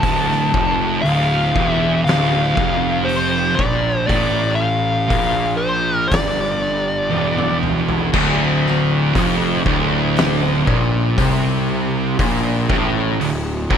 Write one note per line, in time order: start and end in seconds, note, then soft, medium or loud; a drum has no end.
0.00 0.50 D1 medium
0.00 0.51 D2 loud
0.00 1.07 A5 loud
0.00 kick loud
0.00 open hi-hat medium
0.32 snare soft
0.52 1.01 F1 loud
0.52 1.02 F2 loud
0.52 kick loud
1.02 1.52 D1 loud
1.02 1.52 D2 loud
1.02 1.68 F5 medium
1.02 open hi-hat medium
1.53 2.03 E1 loud
1.53 2.03 E2 loud
1.53 kick loud
1.68 2.00 E5 medium
2.04 2.54 D1 loud
2.04 2.54 D2 loud
2.04 3.10 F5 loud
2.04 open hi-hat medium
2.09 snare loud
2.55 3.54 F1 medium
2.55 3.56 F2 loud
2.55 kick loud
3.05 3.58 C5 medium
3.05 open hi-hat medium
3.55 4.07 A#2 loud
3.55 4.06 D5 medium
3.55 kick loud
3.59 4.06 A#1 medium
4.07 5.06 A1 medium
4.07 5.08 A2 loud
4.07 4.55 D5 medium
4.07 kick loud
4.07 open hi-hat medium
4.55 5.62 F5 loud
5.10 6.08 A#1 loud
5.10 6.11 A#2 loud
5.10 kick loud
5.10 open hi-hat medium
5.57 6.06 C5 medium
6.08 7.09 G1 medium
6.08 7.10 G2 loud
6.08 7.58 D5 medium
6.08 kick loud
6.08 open hi-hat medium
6.14 snare loud
7.11 8.10 E1 medium
7.11 8.12 E2 loud
7.11 high tom medium
7.38 mid tom medium
7.63 mid tom medium
7.89 floor tom medium
8.13 9.11 D1 medium
8.13 9.14 D2 loud
8.13 kick loud
8.13 crash loud
8.67 snare soft
9.14 9.63 F1 loud
9.14 9.64 F2 loud
9.14 kick loud
9.14 open hi-hat medium
9.65 10.63 D1 loud
9.65 10.65 D2 loud
9.65 kick loud
10.16 snare loud
10.16 open hi-hat medium
10.67 11.14 A#1 loud
10.67 11.16 A#2 loud
10.67 kick loud
11.18 12.15 C2 medium
11.18 12.18 C3 loud
11.18 kick loud
11.18 open hi-hat medium
12.19 12.66 A#1 medium
12.19 12.69 A#2 loud
12.19 kick loud
12.19 open hi-hat medium
12.70 13.16 A1 loud
12.70 13.18 A2 loud
12.70 kick loud
12.70 snare soft
13.20 13.67 D1 medium
13.20 13.60 D2 medium
13.20 open hi-hat medium
13.70 13.78 A#1 loud
13.70 13.78 A#2 loud
13.70 kick loud